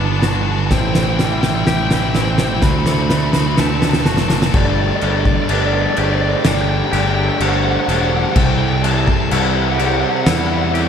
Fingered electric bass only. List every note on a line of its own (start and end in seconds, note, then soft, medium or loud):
0.00 0.71 G1 medium
0.71 1.17 A1 loud
1.20 1.66 A1 medium
1.67 2.59 A1 medium
2.63 3.55 D2 loud
3.59 4.05 D2 medium
4.06 4.52 F#1 medium
4.54 4.90 G1 loud
5.02 5.38 G1 medium
5.49 5.86 G1 medium
5.98 6.34 G1 medium
6.45 6.81 G1 loud
6.93 7.29 G1 medium
7.40 7.76 G1 medium
7.88 8.24 E1 medium
8.36 9.08 C2 loud
9.32 10.03 C2 loud
10.26 10.89 E2 loud